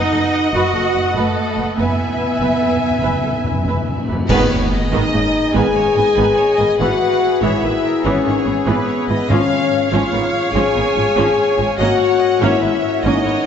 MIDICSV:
0, 0, Header, 1, 10, 480
1, 0, Start_track
1, 0, Tempo, 416667
1, 2062, Time_signature, 12, 3, 24, 8
1, 15509, End_track
2, 0, Start_track
2, 0, Title_t, "Violin section"
2, 0, Program_c, 0, 48
2, 0, Note_on_c, 0, 75, 89
2, 622, Note_off_c, 0, 75, 0
2, 627, Note_on_c, 0, 78, 80
2, 1340, Note_on_c, 0, 69, 84
2, 1345, Note_off_c, 0, 78, 0
2, 2061, Note_off_c, 0, 69, 0
2, 2064, Note_on_c, 0, 71, 70
2, 4180, Note_off_c, 0, 71, 0
2, 4942, Note_on_c, 0, 71, 102
2, 5616, Note_off_c, 0, 71, 0
2, 5667, Note_on_c, 0, 75, 94
2, 6371, Note_off_c, 0, 75, 0
2, 6380, Note_on_c, 0, 80, 97
2, 7792, Note_off_c, 0, 80, 0
2, 7828, Note_on_c, 0, 78, 88
2, 8531, Note_off_c, 0, 78, 0
2, 8555, Note_on_c, 0, 76, 89
2, 9254, Note_off_c, 0, 76, 0
2, 9260, Note_on_c, 0, 73, 82
2, 9981, Note_off_c, 0, 73, 0
2, 9992, Note_on_c, 0, 71, 73
2, 10705, Note_on_c, 0, 73, 89
2, 10707, Note_off_c, 0, 71, 0
2, 11409, Note_off_c, 0, 73, 0
2, 11418, Note_on_c, 0, 77, 86
2, 12139, Note_on_c, 0, 80, 91
2, 12140, Note_off_c, 0, 77, 0
2, 13579, Note_on_c, 0, 78, 93
2, 13581, Note_off_c, 0, 80, 0
2, 14287, Note_off_c, 0, 78, 0
2, 14301, Note_on_c, 0, 76, 91
2, 15016, Note_on_c, 0, 75, 86
2, 15022, Note_off_c, 0, 76, 0
2, 15509, Note_off_c, 0, 75, 0
2, 15509, End_track
3, 0, Start_track
3, 0, Title_t, "Woodwind section"
3, 0, Program_c, 1, 71
3, 0, Note_on_c, 1, 59, 80
3, 0, Note_on_c, 1, 66, 86
3, 0, Note_on_c, 1, 75, 89
3, 0, Note_on_c, 1, 78, 86
3, 2010, Note_off_c, 1, 78, 0
3, 2011, Note_off_c, 1, 66, 0
3, 2059, Note_off_c, 1, 75, 0
3, 2069, Note_on_c, 1, 80, 83
3, 2073, Note_on_c, 1, 76, 81
3, 2076, Note_on_c, 1, 64, 72
3, 4697, Note_off_c, 1, 59, 0
3, 4706, Note_off_c, 1, 80, 0
3, 4708, Note_off_c, 1, 76, 0
3, 4709, Note_off_c, 1, 64, 0
3, 4937, Note_on_c, 1, 59, 95
3, 4939, Note_on_c, 1, 68, 105
3, 4940, Note_on_c, 1, 75, 101
3, 4945, Note_on_c, 1, 80, 91
3, 7775, Note_off_c, 1, 75, 0
3, 7825, Note_on_c, 1, 76, 92
3, 10654, Note_off_c, 1, 59, 0
3, 10655, Note_off_c, 1, 68, 0
3, 10658, Note_off_c, 1, 80, 0
3, 10704, Note_off_c, 1, 76, 0
3, 10708, Note_on_c, 1, 68, 90
3, 10708, Note_on_c, 1, 77, 90
3, 10718, Note_on_c, 1, 61, 92
3, 10719, Note_on_c, 1, 73, 92
3, 13539, Note_off_c, 1, 68, 0
3, 13584, Note_on_c, 1, 70, 94
3, 13585, Note_off_c, 1, 77, 0
3, 13585, Note_on_c, 1, 78, 86
3, 15509, Note_off_c, 1, 61, 0
3, 15509, Note_off_c, 1, 70, 0
3, 15509, Note_off_c, 1, 73, 0
3, 15509, Note_off_c, 1, 78, 0
3, 15509, End_track
4, 0, Start_track
4, 0, Title_t, "Violin section"
4, 0, Program_c, 2, 48
4, 0, Note_on_c, 2, 78, 81
4, 2019, Note_off_c, 2, 78, 0
4, 2060, Note_on_c, 2, 76, 76
4, 2062, Note_on_c, 2, 80, 73
4, 4666, Note_off_c, 2, 80, 0
4, 4711, Note_off_c, 2, 76, 0
4, 4951, Note_on_c, 2, 71, 106
4, 5170, Note_off_c, 2, 71, 0
4, 5195, Note_on_c, 2, 73, 74
4, 5429, Note_off_c, 2, 73, 0
4, 5439, Note_on_c, 2, 75, 86
4, 6372, Note_off_c, 2, 75, 0
4, 6387, Note_on_c, 2, 71, 82
4, 6625, Note_off_c, 2, 71, 0
4, 6629, Note_on_c, 2, 73, 72
4, 6866, Note_off_c, 2, 73, 0
4, 6868, Note_on_c, 2, 75, 77
4, 7094, Note_on_c, 2, 71, 86
4, 7105, Note_off_c, 2, 75, 0
4, 7335, Note_on_c, 2, 73, 75
4, 7338, Note_off_c, 2, 71, 0
4, 7568, Note_on_c, 2, 75, 82
4, 7579, Note_off_c, 2, 73, 0
4, 7813, Note_on_c, 2, 71, 86
4, 7815, Note_off_c, 2, 75, 0
4, 8523, Note_off_c, 2, 71, 0
4, 8547, Note_on_c, 2, 73, 84
4, 8785, Note_off_c, 2, 73, 0
4, 8790, Note_on_c, 2, 71, 71
4, 9026, Note_off_c, 2, 71, 0
4, 9031, Note_on_c, 2, 70, 63
4, 9267, Note_off_c, 2, 70, 0
4, 9283, Note_on_c, 2, 68, 74
4, 9991, Note_on_c, 2, 71, 83
4, 9993, Note_off_c, 2, 68, 0
4, 10218, Note_on_c, 2, 73, 73
4, 10227, Note_off_c, 2, 71, 0
4, 10460, Note_off_c, 2, 73, 0
4, 10467, Note_on_c, 2, 75, 82
4, 10700, Note_off_c, 2, 75, 0
4, 10706, Note_on_c, 2, 77, 101
4, 11423, Note_on_c, 2, 73, 93
4, 11424, Note_off_c, 2, 77, 0
4, 13579, Note_on_c, 2, 75, 95
4, 13583, Note_off_c, 2, 73, 0
4, 13816, Note_off_c, 2, 75, 0
4, 13825, Note_on_c, 2, 73, 73
4, 14053, Note_on_c, 2, 75, 82
4, 14059, Note_off_c, 2, 73, 0
4, 14298, Note_off_c, 2, 75, 0
4, 14302, Note_on_c, 2, 73, 83
4, 14537, Note_off_c, 2, 73, 0
4, 14544, Note_on_c, 2, 71, 67
4, 14772, Note_on_c, 2, 73, 75
4, 14783, Note_off_c, 2, 71, 0
4, 15011, Note_on_c, 2, 75, 88
4, 15017, Note_off_c, 2, 73, 0
4, 15249, Note_on_c, 2, 73, 72
4, 15257, Note_off_c, 2, 75, 0
4, 15491, Note_off_c, 2, 73, 0
4, 15509, End_track
5, 0, Start_track
5, 0, Title_t, "French horn section"
5, 0, Program_c, 3, 60
5, 0, Note_on_c, 3, 63, 81
5, 608, Note_off_c, 3, 63, 0
5, 614, Note_on_c, 3, 66, 80
5, 1334, Note_on_c, 3, 57, 82
5, 1338, Note_off_c, 3, 66, 0
5, 2058, Note_off_c, 3, 57, 0
5, 2058, Note_on_c, 3, 59, 69
5, 4177, Note_off_c, 3, 59, 0
5, 4949, Note_on_c, 3, 59, 107
5, 5620, Note_off_c, 3, 59, 0
5, 5692, Note_on_c, 3, 63, 94
5, 6397, Note_off_c, 3, 63, 0
5, 6399, Note_on_c, 3, 68, 108
5, 7824, Note_on_c, 3, 66, 113
5, 7831, Note_off_c, 3, 68, 0
5, 8543, Note_off_c, 3, 66, 0
5, 8550, Note_on_c, 3, 64, 93
5, 9266, Note_off_c, 3, 64, 0
5, 9270, Note_on_c, 3, 61, 107
5, 9972, Note_off_c, 3, 61, 0
5, 9983, Note_on_c, 3, 59, 85
5, 10703, Note_off_c, 3, 59, 0
5, 10703, Note_on_c, 3, 61, 109
5, 11408, Note_off_c, 3, 61, 0
5, 11420, Note_on_c, 3, 65, 92
5, 12127, Note_off_c, 3, 65, 0
5, 12129, Note_on_c, 3, 68, 109
5, 13377, Note_off_c, 3, 68, 0
5, 13573, Note_on_c, 3, 66, 115
5, 14283, Note_off_c, 3, 66, 0
5, 14300, Note_on_c, 3, 64, 98
5, 15021, Note_off_c, 3, 64, 0
5, 15033, Note_on_c, 3, 63, 93
5, 15509, Note_off_c, 3, 63, 0
5, 15509, End_track
6, 0, Start_track
6, 0, Title_t, "Viola section"
6, 0, Program_c, 4, 48
6, 0, Note_on_c, 4, 71, 75
6, 0, Note_on_c, 4, 75, 76
6, 129, Note_off_c, 4, 71, 0
6, 142, Note_on_c, 4, 69, 61
6, 234, Note_off_c, 4, 69, 0
6, 638, Note_on_c, 4, 71, 79
6, 854, Note_off_c, 4, 71, 0
6, 856, Note_on_c, 4, 69, 60
6, 948, Note_off_c, 4, 69, 0
6, 1100, Note_on_c, 4, 71, 55
6, 1192, Note_off_c, 4, 71, 0
6, 1325, Note_on_c, 4, 71, 75
6, 1557, Note_off_c, 4, 71, 0
6, 1806, Note_on_c, 4, 71, 54
6, 1898, Note_off_c, 4, 71, 0
6, 2043, Note_on_c, 4, 76, 70
6, 2048, Note_on_c, 4, 71, 66
6, 2059, Note_off_c, 4, 75, 0
6, 2278, Note_off_c, 4, 71, 0
6, 2787, Note_on_c, 4, 71, 60
6, 3008, Note_off_c, 4, 71, 0
6, 3013, Note_on_c, 4, 69, 54
6, 3105, Note_off_c, 4, 69, 0
6, 3488, Note_on_c, 4, 71, 65
6, 3718, Note_off_c, 4, 71, 0
6, 3742, Note_on_c, 4, 69, 51
6, 3834, Note_off_c, 4, 69, 0
6, 3980, Note_on_c, 4, 71, 52
6, 4072, Note_off_c, 4, 71, 0
6, 4233, Note_on_c, 4, 71, 61
6, 4451, Note_off_c, 4, 71, 0
6, 4656, Note_off_c, 4, 76, 0
6, 4703, Note_on_c, 4, 71, 53
6, 4795, Note_off_c, 4, 71, 0
6, 4948, Note_on_c, 4, 51, 91
6, 4949, Note_on_c, 4, 59, 105
6, 5168, Note_off_c, 4, 51, 0
6, 5169, Note_off_c, 4, 59, 0
6, 5664, Note_on_c, 4, 59, 74
6, 5667, Note_on_c, 4, 51, 80
6, 5886, Note_off_c, 4, 59, 0
6, 5888, Note_off_c, 4, 51, 0
6, 5901, Note_on_c, 4, 58, 64
6, 5905, Note_on_c, 4, 49, 64
6, 5993, Note_off_c, 4, 58, 0
6, 5997, Note_off_c, 4, 49, 0
6, 6383, Note_on_c, 4, 51, 68
6, 6383, Note_on_c, 4, 59, 79
6, 6606, Note_off_c, 4, 51, 0
6, 6606, Note_off_c, 4, 59, 0
6, 6633, Note_on_c, 4, 58, 63
6, 6634, Note_on_c, 4, 49, 70
6, 6725, Note_off_c, 4, 58, 0
6, 6726, Note_off_c, 4, 49, 0
6, 6881, Note_on_c, 4, 51, 66
6, 6887, Note_on_c, 4, 59, 66
6, 6973, Note_off_c, 4, 51, 0
6, 6978, Note_off_c, 4, 59, 0
6, 7114, Note_on_c, 4, 51, 77
6, 7116, Note_on_c, 4, 59, 75
6, 7332, Note_off_c, 4, 51, 0
6, 7333, Note_off_c, 4, 59, 0
6, 7587, Note_on_c, 4, 51, 64
6, 7589, Note_on_c, 4, 59, 66
6, 7679, Note_off_c, 4, 51, 0
6, 7681, Note_off_c, 4, 59, 0
6, 7833, Note_on_c, 4, 59, 72
6, 7840, Note_on_c, 4, 52, 79
6, 8051, Note_off_c, 4, 59, 0
6, 8055, Note_off_c, 4, 52, 0
6, 8542, Note_on_c, 4, 52, 80
6, 8543, Note_on_c, 4, 59, 75
6, 8766, Note_off_c, 4, 52, 0
6, 8766, Note_off_c, 4, 59, 0
6, 8785, Note_on_c, 4, 58, 62
6, 8788, Note_on_c, 4, 51, 65
6, 8877, Note_off_c, 4, 58, 0
6, 8881, Note_off_c, 4, 51, 0
6, 9267, Note_on_c, 4, 59, 80
6, 9268, Note_on_c, 4, 52, 85
6, 9488, Note_off_c, 4, 59, 0
6, 9489, Note_off_c, 4, 52, 0
6, 9502, Note_on_c, 4, 51, 67
6, 9502, Note_on_c, 4, 58, 67
6, 9594, Note_off_c, 4, 51, 0
6, 9595, Note_off_c, 4, 58, 0
6, 9739, Note_on_c, 4, 59, 67
6, 9741, Note_on_c, 4, 52, 64
6, 9831, Note_off_c, 4, 59, 0
6, 9833, Note_off_c, 4, 52, 0
6, 9981, Note_on_c, 4, 52, 76
6, 9985, Note_on_c, 4, 59, 76
6, 10205, Note_off_c, 4, 52, 0
6, 10207, Note_off_c, 4, 59, 0
6, 10471, Note_on_c, 4, 59, 67
6, 10473, Note_on_c, 4, 52, 66
6, 10563, Note_off_c, 4, 59, 0
6, 10566, Note_off_c, 4, 52, 0
6, 10713, Note_on_c, 4, 53, 86
6, 10714, Note_on_c, 4, 61, 78
6, 10931, Note_off_c, 4, 53, 0
6, 10932, Note_off_c, 4, 61, 0
6, 11429, Note_on_c, 4, 53, 72
6, 11431, Note_on_c, 4, 61, 87
6, 11649, Note_off_c, 4, 53, 0
6, 11650, Note_off_c, 4, 61, 0
6, 11662, Note_on_c, 4, 59, 69
6, 11665, Note_on_c, 4, 51, 61
6, 11755, Note_off_c, 4, 59, 0
6, 11757, Note_off_c, 4, 51, 0
6, 12146, Note_on_c, 4, 61, 76
6, 12149, Note_on_c, 4, 53, 76
6, 12368, Note_off_c, 4, 61, 0
6, 12369, Note_off_c, 4, 53, 0
6, 12386, Note_on_c, 4, 51, 66
6, 12392, Note_on_c, 4, 59, 61
6, 12478, Note_off_c, 4, 51, 0
6, 12484, Note_off_c, 4, 59, 0
6, 12612, Note_on_c, 4, 53, 70
6, 12614, Note_on_c, 4, 61, 59
6, 12704, Note_off_c, 4, 53, 0
6, 12707, Note_off_c, 4, 61, 0
6, 12860, Note_on_c, 4, 61, 94
6, 12864, Note_on_c, 4, 53, 90
6, 13084, Note_off_c, 4, 61, 0
6, 13086, Note_off_c, 4, 53, 0
6, 13336, Note_on_c, 4, 53, 66
6, 13336, Note_on_c, 4, 61, 70
6, 13428, Note_off_c, 4, 53, 0
6, 13428, Note_off_c, 4, 61, 0
6, 13591, Note_on_c, 4, 61, 79
6, 13594, Note_on_c, 4, 58, 83
6, 13810, Note_off_c, 4, 61, 0
6, 13812, Note_off_c, 4, 58, 0
6, 14299, Note_on_c, 4, 58, 88
6, 14303, Note_on_c, 4, 61, 90
6, 14524, Note_off_c, 4, 58, 0
6, 14526, Note_off_c, 4, 61, 0
6, 14543, Note_on_c, 4, 56, 75
6, 14545, Note_on_c, 4, 59, 69
6, 14635, Note_off_c, 4, 56, 0
6, 14637, Note_off_c, 4, 59, 0
6, 15031, Note_on_c, 4, 61, 85
6, 15035, Note_on_c, 4, 58, 82
6, 15250, Note_off_c, 4, 61, 0
6, 15252, Note_off_c, 4, 58, 0
6, 15268, Note_on_c, 4, 59, 64
6, 15273, Note_on_c, 4, 56, 63
6, 15360, Note_off_c, 4, 59, 0
6, 15365, Note_off_c, 4, 56, 0
6, 15509, End_track
7, 0, Start_track
7, 0, Title_t, "Cello section"
7, 0, Program_c, 5, 48
7, 0, Note_on_c, 5, 63, 99
7, 619, Note_on_c, 5, 66, 87
7, 621, Note_off_c, 5, 63, 0
7, 1326, Note_off_c, 5, 66, 0
7, 1344, Note_on_c, 5, 57, 96
7, 2049, Note_off_c, 5, 57, 0
7, 2065, Note_on_c, 5, 59, 74
7, 4224, Note_off_c, 5, 59, 0
7, 4955, Note_on_c, 5, 44, 96
7, 5172, Note_off_c, 5, 44, 0
7, 5673, Note_on_c, 5, 44, 87
7, 5765, Note_off_c, 5, 44, 0
7, 5910, Note_on_c, 5, 44, 70
7, 6003, Note_off_c, 5, 44, 0
7, 6389, Note_on_c, 5, 44, 81
7, 6481, Note_off_c, 5, 44, 0
7, 6631, Note_on_c, 5, 44, 62
7, 6723, Note_off_c, 5, 44, 0
7, 6878, Note_on_c, 5, 44, 60
7, 6970, Note_off_c, 5, 44, 0
7, 7110, Note_on_c, 5, 44, 86
7, 7202, Note_off_c, 5, 44, 0
7, 7588, Note_on_c, 5, 44, 54
7, 7680, Note_off_c, 5, 44, 0
7, 7827, Note_on_c, 5, 44, 83
7, 7920, Note_off_c, 5, 44, 0
7, 8544, Note_on_c, 5, 44, 86
7, 8636, Note_off_c, 5, 44, 0
7, 8790, Note_on_c, 5, 44, 68
7, 8882, Note_off_c, 5, 44, 0
7, 9271, Note_on_c, 5, 44, 76
7, 9363, Note_off_c, 5, 44, 0
7, 9517, Note_on_c, 5, 44, 58
7, 9609, Note_off_c, 5, 44, 0
7, 9752, Note_on_c, 5, 44, 70
7, 9845, Note_off_c, 5, 44, 0
7, 9987, Note_on_c, 5, 44, 79
7, 10080, Note_off_c, 5, 44, 0
7, 10471, Note_on_c, 5, 44, 60
7, 10564, Note_off_c, 5, 44, 0
7, 10711, Note_on_c, 5, 44, 80
7, 10804, Note_off_c, 5, 44, 0
7, 11433, Note_on_c, 5, 44, 85
7, 11525, Note_off_c, 5, 44, 0
7, 11673, Note_on_c, 5, 44, 69
7, 11765, Note_off_c, 5, 44, 0
7, 12149, Note_on_c, 5, 44, 85
7, 12241, Note_off_c, 5, 44, 0
7, 12396, Note_on_c, 5, 44, 63
7, 12488, Note_off_c, 5, 44, 0
7, 12631, Note_on_c, 5, 44, 67
7, 12723, Note_off_c, 5, 44, 0
7, 12872, Note_on_c, 5, 44, 85
7, 12964, Note_off_c, 5, 44, 0
7, 13353, Note_on_c, 5, 44, 56
7, 13446, Note_off_c, 5, 44, 0
7, 13583, Note_on_c, 5, 44, 88
7, 13675, Note_off_c, 5, 44, 0
7, 14311, Note_on_c, 5, 44, 97
7, 14403, Note_off_c, 5, 44, 0
7, 14545, Note_on_c, 5, 44, 67
7, 14637, Note_off_c, 5, 44, 0
7, 15030, Note_on_c, 5, 44, 82
7, 15122, Note_off_c, 5, 44, 0
7, 15268, Note_on_c, 5, 44, 60
7, 15360, Note_off_c, 5, 44, 0
7, 15509, End_track
8, 0, Start_track
8, 0, Title_t, "Timpani"
8, 0, Program_c, 6, 47
8, 2064, Note_on_c, 6, 42, 33
8, 2144, Note_off_c, 6, 42, 0
8, 2156, Note_on_c, 6, 42, 33
8, 2227, Note_off_c, 6, 42, 0
8, 2241, Note_on_c, 6, 42, 36
8, 2305, Note_off_c, 6, 42, 0
8, 2319, Note_on_c, 6, 42, 34
8, 2394, Note_off_c, 6, 42, 0
8, 2408, Note_on_c, 6, 42, 39
8, 2475, Note_off_c, 6, 42, 0
8, 2488, Note_on_c, 6, 42, 39
8, 2560, Note_off_c, 6, 42, 0
8, 2574, Note_on_c, 6, 42, 40
8, 2657, Note_off_c, 6, 42, 0
8, 2671, Note_on_c, 6, 42, 42
8, 2739, Note_off_c, 6, 42, 0
8, 2753, Note_on_c, 6, 42, 40
8, 2819, Note_off_c, 6, 42, 0
8, 2833, Note_on_c, 6, 42, 45
8, 2910, Note_off_c, 6, 42, 0
8, 2924, Note_on_c, 6, 42, 41
8, 2995, Note_off_c, 6, 42, 0
8, 3009, Note_on_c, 6, 42, 46
8, 3082, Note_off_c, 6, 42, 0
8, 3096, Note_on_c, 6, 42, 47
8, 3166, Note_off_c, 6, 42, 0
8, 3180, Note_on_c, 6, 42, 53
8, 3253, Note_off_c, 6, 42, 0
8, 3266, Note_on_c, 6, 42, 49
8, 3332, Note_off_c, 6, 42, 0
8, 3345, Note_on_c, 6, 42, 51
8, 3425, Note_off_c, 6, 42, 0
8, 3439, Note_on_c, 6, 42, 58
8, 3509, Note_off_c, 6, 42, 0
8, 3522, Note_on_c, 6, 42, 56
8, 3604, Note_off_c, 6, 42, 0
8, 3618, Note_on_c, 6, 42, 56
8, 3684, Note_off_c, 6, 42, 0
8, 3698, Note_on_c, 6, 42, 60
8, 3774, Note_off_c, 6, 42, 0
8, 3788, Note_on_c, 6, 42, 58
8, 3859, Note_off_c, 6, 42, 0
8, 3873, Note_on_c, 6, 42, 62
8, 3950, Note_off_c, 6, 42, 0
8, 3963, Note_on_c, 6, 42, 67
8, 4030, Note_off_c, 6, 42, 0
8, 4044, Note_on_c, 6, 42, 68
8, 4118, Note_off_c, 6, 42, 0
8, 4132, Note_on_c, 6, 42, 75
8, 4209, Note_off_c, 6, 42, 0
8, 4223, Note_on_c, 6, 42, 69
8, 4297, Note_off_c, 6, 42, 0
8, 4310, Note_on_c, 6, 42, 70
8, 4381, Note_off_c, 6, 42, 0
8, 4394, Note_on_c, 6, 42, 75
8, 4465, Note_off_c, 6, 42, 0
8, 4479, Note_on_c, 6, 42, 74
8, 4561, Note_off_c, 6, 42, 0
8, 4573, Note_on_c, 6, 42, 78
8, 4651, Note_off_c, 6, 42, 0
8, 4663, Note_on_c, 6, 42, 82
8, 4736, Note_off_c, 6, 42, 0
8, 4749, Note_on_c, 6, 42, 101
8, 4821, Note_off_c, 6, 42, 0
8, 4835, Note_on_c, 6, 42, 82
8, 4912, Note_off_c, 6, 42, 0
8, 4947, Note_on_c, 6, 44, 91
8, 5619, Note_off_c, 6, 44, 0
8, 10709, Note_on_c, 6, 44, 85
8, 11380, Note_off_c, 6, 44, 0
8, 15509, End_track
9, 0, Start_track
9, 0, Title_t, "Double bass section"
9, 0, Program_c, 7, 48
9, 146, Note_on_c, 7, 30, 55
9, 238, Note_off_c, 7, 30, 0
9, 622, Note_on_c, 7, 30, 89
9, 714, Note_off_c, 7, 30, 0
9, 855, Note_on_c, 7, 30, 58
9, 948, Note_off_c, 7, 30, 0
9, 1095, Note_on_c, 7, 30, 54
9, 1187, Note_off_c, 7, 30, 0
9, 1336, Note_on_c, 7, 30, 78
9, 1428, Note_off_c, 7, 30, 0
9, 1817, Note_on_c, 7, 30, 55
9, 1909, Note_off_c, 7, 30, 0
9, 2058, Note_on_c, 7, 30, 70
9, 2150, Note_off_c, 7, 30, 0
9, 2775, Note_on_c, 7, 30, 74
9, 2867, Note_off_c, 7, 30, 0
9, 3021, Note_on_c, 7, 30, 51
9, 3113, Note_off_c, 7, 30, 0
9, 3500, Note_on_c, 7, 30, 76
9, 3592, Note_off_c, 7, 30, 0
9, 3736, Note_on_c, 7, 30, 53
9, 3829, Note_off_c, 7, 30, 0
9, 3981, Note_on_c, 7, 30, 50
9, 4073, Note_off_c, 7, 30, 0
9, 4220, Note_on_c, 7, 30, 73
9, 4312, Note_off_c, 7, 30, 0
9, 4708, Note_on_c, 7, 30, 55
9, 4800, Note_off_c, 7, 30, 0
9, 4951, Note_on_c, 7, 32, 92
9, 5170, Note_off_c, 7, 32, 0
9, 5675, Note_on_c, 7, 32, 86
9, 5767, Note_off_c, 7, 32, 0
9, 5910, Note_on_c, 7, 32, 60
9, 6003, Note_off_c, 7, 32, 0
9, 6394, Note_on_c, 7, 32, 94
9, 6486, Note_off_c, 7, 32, 0
9, 6634, Note_on_c, 7, 32, 64
9, 6726, Note_off_c, 7, 32, 0
9, 6869, Note_on_c, 7, 32, 59
9, 6961, Note_off_c, 7, 32, 0
9, 7109, Note_on_c, 7, 32, 87
9, 7201, Note_off_c, 7, 32, 0
9, 7590, Note_on_c, 7, 32, 65
9, 7682, Note_off_c, 7, 32, 0
9, 7830, Note_on_c, 7, 32, 85
9, 7922, Note_off_c, 7, 32, 0
9, 8551, Note_on_c, 7, 32, 89
9, 8644, Note_off_c, 7, 32, 0
9, 8796, Note_on_c, 7, 32, 63
9, 8888, Note_off_c, 7, 32, 0
9, 9273, Note_on_c, 7, 32, 91
9, 9365, Note_off_c, 7, 32, 0
9, 9514, Note_on_c, 7, 32, 61
9, 9606, Note_off_c, 7, 32, 0
9, 9751, Note_on_c, 7, 32, 54
9, 9843, Note_off_c, 7, 32, 0
9, 9986, Note_on_c, 7, 32, 88
9, 10078, Note_off_c, 7, 32, 0
9, 10468, Note_on_c, 7, 32, 64
9, 10560, Note_off_c, 7, 32, 0
9, 10707, Note_on_c, 7, 32, 83
9, 10799, Note_off_c, 7, 32, 0
9, 11433, Note_on_c, 7, 32, 90
9, 11526, Note_off_c, 7, 32, 0
9, 11670, Note_on_c, 7, 32, 58
9, 11762, Note_off_c, 7, 32, 0
9, 12146, Note_on_c, 7, 32, 93
9, 12239, Note_off_c, 7, 32, 0
9, 12385, Note_on_c, 7, 32, 63
9, 12477, Note_off_c, 7, 32, 0
9, 12628, Note_on_c, 7, 32, 64
9, 12720, Note_off_c, 7, 32, 0
9, 12867, Note_on_c, 7, 32, 85
9, 12959, Note_off_c, 7, 32, 0
9, 13339, Note_on_c, 7, 32, 66
9, 13431, Note_off_c, 7, 32, 0
9, 13583, Note_on_c, 7, 32, 82
9, 13676, Note_off_c, 7, 32, 0
9, 14305, Note_on_c, 7, 32, 92
9, 14397, Note_off_c, 7, 32, 0
9, 14543, Note_on_c, 7, 32, 57
9, 14635, Note_off_c, 7, 32, 0
9, 15021, Note_on_c, 7, 32, 85
9, 15113, Note_off_c, 7, 32, 0
9, 15261, Note_on_c, 7, 32, 59
9, 15353, Note_off_c, 7, 32, 0
9, 15509, End_track
10, 0, Start_track
10, 0, Title_t, "Drums"
10, 4944, Note_on_c, 9, 35, 79
10, 4944, Note_on_c, 9, 49, 73
10, 5059, Note_off_c, 9, 35, 0
10, 5059, Note_off_c, 9, 49, 0
10, 15509, End_track
0, 0, End_of_file